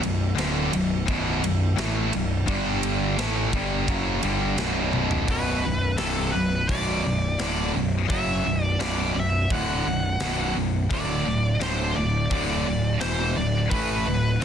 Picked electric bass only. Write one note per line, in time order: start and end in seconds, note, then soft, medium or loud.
0.03 0.35 B0 medium
0.37 0.70 D1 medium
0.73 1.06 B0 medium
1.08 1.41 B0 loud
1.42 1.75 B0 medium
1.78 2.11 A1 loud
2.13 2.46 B0 medium
2.48 3.14 G1 loud
3.18 3.51 A1 medium
3.53 3.86 G1 loud
3.88 4.21 F#1 loud
4.23 4.56 G1 loud
4.59 5.25 B0 medium
5.28 5.61 B0 medium
5.64 5.97 B0 medium
5.99 6.32 C1 medium
6.34 6.67 B0 medium
6.69 7.02 B0 loud
7.04 7.37 B0 medium
7.39 7.72 D1 medium
7.74 8.07 B0 medium
8.10 8.43 F#1 loud
8.45 8.78 B0 medium
8.79 9.12 B0 medium
9.15 9.48 B0 medium
9.50 9.83 D1 medium
9.85 10.18 B0 medium
10.20 10.53 B0 medium
10.55 10.88 B0 medium
10.90 11.23 D1 loud
11.26 11.59 D1 medium
11.61 11.94 D1 medium
11.97 12.29 D1 medium
12.31 12.64 D1 loud
12.67 13.00 D1 medium
13.03 13.35 E1 medium
13.37 13.70 D1 medium
13.71 14.04 A1 loud
14.08 14.40 D1 medium